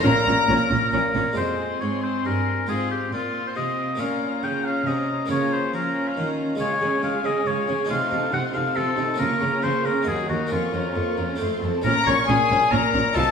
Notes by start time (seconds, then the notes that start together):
0.00 A#1 A#2 A#3 C#4 F4 A#4 A#5
0.04 A#2
0.26 A#1 A#2 C#4
0.48 A#1 A#2 C#4
0.70 A#1 A#2 C#4
0.93 A#1 A#2 C#4 A#4
1.15 A#1 A#2 C#4
1.33 G#3 C4 F4
1.37 F2 C4 G#4 C5 C6
1.81 G#2 C#5
2.03 C5
2.25 G2 A#4
2.67 G#2 C4 F4 G#4 C6
2.91 G4
3.12 A#2 C4 F4 C6
3.47 C5
3.56 C3 D#5
3.95 A#3 C#4 F4 A#5
4.00 A#2 C#4 F5
4.43 C#3 G5
4.64 F5
4.86 C3 D#5
5.26 A#3 C#4 F4
5.30 C#3 C#4 F4 C#5 A#5
5.53 C5
5.73 F3 C#4 F4 A#4 A#5
6.07 F5
6.16 D#3
6.55 G#3 C#4 F4
6.59 C#3 G#3 F4 C#5 F5
6.81 C#3 C#4 G#4 G#5
7.02 C#3 G#3 F4 F5
7.24 C#3 C#4 G#4 D#5 G#5
7.46 C#3 G#3 F4 C#5 F5
7.67 C#3 C#4 G#4 G#5
7.85 A3 D#4 F4
7.89 C3 C4 F4 F5 C6
8.11 C3 D#4 A4 A5
8.32 C3 C4 F4 F#5 C6
8.54 C3 D#4 A4 F5 A5
8.75 C3 C4 F4 A4 C6
8.97 C3 D#4 A4 A5
9.14 A#3 C#4 F4
9.19 C#3 A#3 F4 A#4 C#6
9.40 C#3 C#4 A#4 A#5
9.63 C#3 A#3 F4 C5 C#6
9.85 C#3 C#4 A#4 A#5
10.02 A#3 D#4
10.07 D#2 F#3 F#4 G#4 F#5
10.29 D#2 A#3 D#4 F#4 A#5
10.47 A#3 C#4
10.51 F2 A#3 F4 C#6
10.73 F2 C#4 A#4 A#5
10.95 F2 A#3 F4 C#6
11.17 F2 C#4 A#4 A#5
11.36 F2 A3 C4 F4
11.40 F2 A3 F4 C6
11.62 F2 C4 A4 A5
11.82 A#1 A#2 C#4 F4 A#4 A#5
12.06 A#1 A#2 C#4 C#5 C#6
12.28 A#1 A#2 C#4 G#4 G#5
12.50 A#1 A#2 C#4
12.71 A#1 A#2 C#4 A#4 A#5
12.93 A#1 A#2 C#4
13.13 C2 C3 D#4 F4 A4 A5